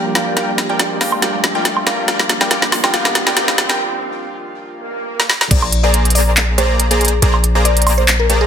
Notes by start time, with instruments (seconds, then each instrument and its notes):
Already playing: tine electric piano F3 G3 A#3 D4 G4, analog synth pad F3 A#3 G4, supersaw synth G3 F4 A#4 D5 G5, riser
0.15 supersaw synth G3 F4 A#4 D5 G5, synth pluck F5, snare, closed hi-hat
0.34 tine electric piano F3 G3 A#3 D4, supersaw synth G3 F4 A#4 D5 G5, synth pluck F5, snare, closed hi-hat
0.39 tine electric piano G4
0.58 snare, closed hi-hat
0.69 supersaw synth G3 F4 A#4 D5 G5, synth pluck G5
0.80 snare, closed hi-hat
1.01 supersaw synth G3 F4 A#4 D5 G5, synth pluck F5, snare, open hi-hat
1.12 high woodblock
1.20 tine electric piano F3 G3 A#3 D4, supersaw synth G3 F4 A#4 D5 G5, synth pluck F5, snare, closed hi-hat
1.24 tine electric piano G4
1.44 snare, closed hi-hat
1.55 supersaw synth G3 F4 A#4 D5 G5, synth pluck G5
1.65 snare, closed hi-hat
1.77 high woodblock
1.87 supersaw synth G3 F4 A#4 D5 G5, synth pluck F5, snare, closed hi-hat
2.06 analog synth pad D#3 F4, tine electric piano F3 G3 A#3 D4 G4, supersaw synth G3 F4 A#4 D5 G5, synth pluck F5, snare, closed hi-hat
2.20 snare
2.29 snare, closed hi-hat
2.41 supersaw synth G3 F4 A#4 D5 G5, synth pluck G5, snare
2.49 tine electric piano F3 G3 A#3 D4 G4, supersaw synth G3 F4 A#4 D5 G5, synth pluck F5, snare, closed hi-hat
2.62 snare
2.72 snare, open hi-hat, high woodblock
2.84 supersaw synth G3 F4 A#4 D5 G5, synth pluck G5, snare, high woodblock
2.92 tine electric piano F3 G3 A#3 D4, supersaw synth G3 F4 A#4 D5 G5, synth pluck F5, snare, closed hi-hat
2.96 tine electric piano G4
3.05 snare
3.15 snare, closed hi-hat
3.27 supersaw synth G3 F4 A#4 D5 G5, synth pluck G5, snare
3.35 tine electric piano F3 G3 A#3 D4 G4, supersaw synth G3 F4 A#4 D5 G5, synth pluck F5, snare, closed hi-hat
3.48 snare
3.58 snare, closed hi-hat
3.69 supersaw synth G3 F4 A#4 D5 G5, synth pluck G5, snare
4.65 swell
5.20 snare
5.30 snare
5.41 snare
5.51 808-style bass A#1, supersaw synth A#3 G#4 C5 D5 A#5, synth pluck D5, kick, closed hi-hat, crash
5.62 high woodblock
5.72 closed hi-hat
5.83 supersaw synth A#3 G#4 C5 D5 A#5, synth pluck D5
5.94 closed hi-hat
6.05 closed hi-hat
6.10 closed hi-hat
6.15 supersaw synth A#3 G#4 C5 D5 A#5, synth pluck D5, open hi-hat
6.37 clap, closed hi-hat
6.58 supersaw synth A#3 G#4 C5 D5 A#5, synth pluck C5, closed hi-hat
6.80 closed hi-hat
6.91 supersaw synth A#3 G#4 C5 D5 A#5, synth pluck G#4, closed hi-hat
7.01 closed hi-hat
7.05 closed hi-hat
7.08 closed hi-hat
7.22 808-style bass A#1, supersaw synth A#3 G#4 C5 D5 A#5, synth pluck G#4, closed hi-hat
7.34 high woodblock
7.44 closed hi-hat
7.55 supersaw synth A#3 G#4 C5 D5 A#5
7.65 synth pluck D5, closed hi-hat
7.77 closed hi-hat
7.82 closed hi-hat
7.87 supersaw synth A#3 G#4 C5 D5 A#5, open hi-hat, high woodblock
7.98 synth pluck C5
8.08 clap, closed hi-hat
8.20 synth pluck A#4
8.30 supersaw synth A#3 G#4 C5 D5 A#5, closed hi-hat
8.41 synth pluck G#4